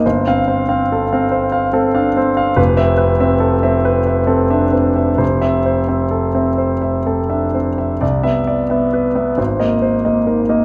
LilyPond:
\new Staff \with { instrumentName = "Grand piano" } { \time 6/8 \key f \lydian \tempo 4. = 45 << { g,,16 <c' f''>8 c'8 c'8 r16 c'16 d'16 c'8 | f,,16 <c' e''>8 c'8 c'8 r16 c'16 d'16 c'8 | f,,16 <c' e''>8 c'8 c'8 r16 c'16 d'16 c'8 | c,16 <b e''>8 b8 b16 aes,,16 <bes ees''>8 bes16 ees'16 bes16 | } \\ { c''8 c''16 f''16 a'16 f''16 c''16 f''16 a'16 f''16 c''16 f''16 | b'8 b'16 e''16 a'16 e''16 b'16 e''16 a'16 e''16 b'16 e''16 | c''8 c''16 e''16 a'16 e''16 c''16 e''16 a'16 e''16 c''16 e''16 | d''8 d''16 e''16 b'16 e''16 c''8 c''16 ees''16 bes'16 ees''16 | } >> }